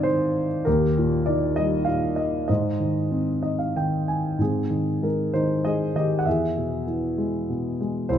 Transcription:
0.00 0.63 G#2 medium
0.00 0.05 D#3 soft
0.00 0.63 C4 soft
0.00 0.63 D#4 soft
0.00 0.03 C5 medium
0.00 0.47 C5 medium
0.00 0.69 D5 medium
0.00 0.68 D#5 medium
0.00 0.68 F5 medium
0.00 0.69 G#5 medium
0.05 0.65 D#3 soft
0.65 2.45 D#2 medium
0.65 1.54 G4 medium
0.65 1.23 A#4 medium
0.98 1.85 A#2 medium
1.26 2.46 D#3 medium
1.26 1.55 D5 medium
1.56 2.47 G3 soft
1.56 1.88 D#5 medium
1.85 2.47 A#2 soft
1.85 2.18 F5 medium
2.16 2.46 D#5 medium
2.48 4.36 G#2 medium
2.48 4.04 C5 soft
2.48 3.41 D#5 medium
2.80 3.75 D#3 soft
3.11 4.36 C4 soft
3.42 4.36 D#4 soft
3.42 3.58 D#5 medium
3.59 3.74 F5 medium
3.76 4.38 D#3 soft
3.76 4.06 G5 medium
4.08 4.38 G#5 medium
4.39 6.22 G#2 soft
4.39 4.99 C4 soft
4.39 5.06 G#4 medium
4.70 5.33 D#3 soft
5.02 5.63 G#3 soft
5.02 5.32 D#4 soft
5.02 5.32 A#4 medium
5.34 5.94 D#3 soft
5.34 5.63 D#4 medium
5.34 5.66 C5 medium
5.65 6.24 G#3 soft
5.65 5.94 G#4 medium
5.65 5.93 D#5 medium
5.95 6.25 D#3 soft
5.95 6.19 G4 medium
5.95 6.18 D#5 medium
6.19 6.26 F#5 medium
6.26 8.05 E2 medium
6.26 6.84 G#4 medium
6.26 6.83 E5 medium
6.57 7.48 B2 soft
6.87 8.05 E3 soft
7.18 7.79 G#3 soft
7.49 8.08 B2 soft
7.81 8.09 G#3 soft
8.09 8.18 C2 medium
8.09 8.18 E4 medium
8.09 8.18 C5 medium

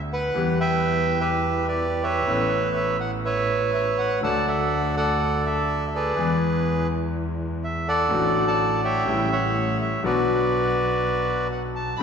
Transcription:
0.00 0.26 D2 medium
0.00 0.26 D3 medium
0.00 0.26 A3 soft
0.00 0.26 B3 soft
0.00 0.27 G4 medium
0.13 0.59 B4 medium
0.13 0.61 F#5 medium
0.34 2.18 E2 medium
0.34 0.35 E3 medium
0.34 2.18 E3 medium
0.34 2.18 G3 soft
0.34 2.18 B3 soft
0.34 2.19 G4 medium
0.60 1.19 B4 medium
0.60 1.19 E5 medium
0.60 1.22 G5 medium
1.20 1.67 G4 medium
1.20 1.66 B4 medium
1.20 1.65 E5 medium
1.68 2.24 G4 medium
1.68 2.02 B4 medium
1.68 2.05 D5 medium
2.03 2.96 B4 medium
2.03 2.96 C#5 medium
2.03 2.72 E5 medium
2.26 4.13 A1 medium
2.26 4.13 A2 medium
2.26 4.12 E3 medium
2.26 4.12 B3 medium
2.26 4.13 C#4 soft
2.26 4.14 A4 medium
2.76 2.99 E5 medium
3.00 3.11 F#5 medium
3.25 4.19 B4 medium
3.25 4.19 C#5 medium
3.25 3.70 E5 medium
3.74 3.97 E5 medium
3.98 4.21 F#5 medium
4.21 6.08 D2 medium
4.21 6.08 D3 medium
4.21 6.07 F#3 medium
4.21 6.07 A3 soft
4.21 6.08 D4 soft
4.21 6.09 A4 medium
4.21 4.96 D5 medium
4.21 4.95 F#5 medium
4.21 4.46 A5 medium
4.48 4.95 A4 medium
4.48 4.93 E5 medium
4.97 5.45 A4 medium
4.97 5.90 D5 medium
4.97 5.42 F#5 medium
5.46 6.14 A4 medium
5.46 5.86 E5 medium
5.87 5.94 E5 medium
5.95 6.87 G#4 medium
5.95 6.87 B4 medium
5.95 6.39 D5 medium
6.16 8.01 E2 medium
6.16 8.01 E3 medium
6.16 8.01 G#3 medium
6.16 8.01 B3 soft
6.16 8.02 G#4 medium
7.64 7.88 E5 medium
7.88 8.80 A4 medium
7.88 8.47 D5 medium
7.88 8.47 F#5 loud
8.08 9.03 A1 medium
8.08 9.03 A2 medium
8.08 9.01 D3 medium
8.08 9.02 F#3 medium
8.08 9.03 A3 soft
8.12 9.04 F#4 medium
8.48 9.04 D5 medium
8.48 9.04 F#5 medium
8.48 8.81 A5 medium
8.84 9.31 C#5 medium
8.84 9.77 E5 medium
8.84 9.29 G5 medium
9.05 9.99 A1 medium
9.05 10.00 A1 medium
9.05 10.00 A2 medium
9.05 9.98 C#3 medium
9.05 9.99 G3 medium
9.05 10.00 A3 soft
9.09 10.00 E4 medium
9.32 10.01 C#5 medium
9.32 9.82 F#5 medium
9.81 10.03 E5 medium
10.02 11.90 B1 medium
10.02 11.91 B1 medium
10.02 11.90 B2 medium
10.02 11.89 D3 medium
10.02 11.90 F#3 soft
10.02 11.91 B3 medium
10.02 11.48 F#4 medium
10.02 11.47 B4 medium
10.02 11.47 D5 medium
10.06 11.91 F#4 medium
11.52 11.63 F#5 medium
11.76 11.98 A5 medium
11.98 12.03 D3 medium
11.98 12.03 G3 soft

